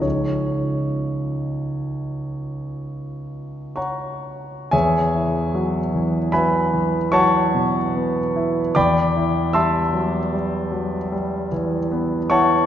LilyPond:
<<
  \new Staff \with { instrumentName = "Grand piano" } { \time 5/4 \key des \major \tempo 4 = 74 des''1 <des'' ges'' bes'' des'''>4 | \key e \major <gis' cis'' e'' gis''>2 <b' e'' gis'' b''>4 <cis'' fis'' a'' cis'''>2 | <d'' g'' b'' d'''>4 <e'' a'' c''' e'''>2~ <e'' a'' c''' e'''>8 r4 <cis'' fis'' a'' cis'''>8 | }
  \new Staff \with { instrumentName = "Grand piano" } { \clef bass \time 5/4 \key des \major <des, f des' ees' aes'>1~ <des, f des' ees' aes'>4 | \key e \major e,8 e'8 fis8 e8 fis8 e8 fis8 b,8 b8 e'8 | e,8 e'8 g8 fis8 g8 fis8 g8 e8 b8 e'8 | }
>>